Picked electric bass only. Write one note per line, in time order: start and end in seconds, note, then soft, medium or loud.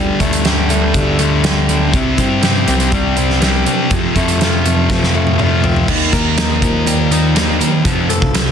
0.20 0.91 D2 medium
0.94 1.89 D2 medium
1.94 2.17 C2 medium
2.18 2.64 G2 medium
2.68 3.62 C2 medium
3.91 4.02 F2 medium
4.16 4.86 F2 medium
4.89 5.84 F2 medium
5.88 6.11 D#2 medium
6.13 6.59 D#2 medium
6.62 7.57 D#2 medium
7.85 8.20 F2 medium
8.22 8.52 C2 medium